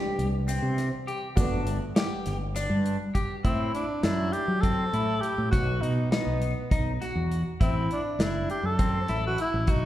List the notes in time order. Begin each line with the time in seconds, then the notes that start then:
Already playing: E3 B3 D4 G4
0.19 C2, closed hi-hat
0.48 C4, closed hi-hat, shaker
0.62 C3
0.78 snare, closed hi-hat
1.07 G4, closed hi-hat
1.36 G1 A3 B3 D4 F#4, kick, closed hi-hat, shaker
1.53 G1
1.67 closed hi-hat, shaker
1.96 G4, snare, closed hi-hat
2.26 G1, snare, closed hi-hat
2.56 D4, snare, closed hi-hat, shaker
2.70 G2
2.86 closed hi-hat
3.15 G4, kick, closed hi-hat
3.44 A2 C4 E4, kick, closed hi-hat
3.74 D4, closed hi-hat
4.03 F#2 D4 E4, snare, closed hi-hat
4.32 G4, closed hi-hat
4.48 F#3
4.61 C4 A4, kick, closed hi-hat
4.93 A2 E4, closed hi-hat
5.21 G4, closed hi-hat
5.38 A2
5.51 B1 F#4, kick, closed hi-hat
5.81 B2 D#4, closed hi-hat
6.12 B3 D#4, snare, closed hi-hat
6.27 B1
6.42 closed hi-hat
6.71 B1 D#4, kick, closed hi-hat
7.01 F#4, snare, closed hi-hat
7.15 E2
7.31 closed hi-hat
7.61 A1 C4 E4, kick, closed hi-hat
7.91 D4, closed hi-hat
8.19 F#1 D4 E4, snare, closed hi-hat
8.50 G4, closed hi-hat
8.63 F#2 A4
8.79 C4, kick, closed hi-hat
9.08 A1 E4, snare, closed hi-hat
9.27 F#4
9.38 E4, closed hi-hat
9.54 A1
9.67 B1 D#4 F#4, kick, closed hi-hat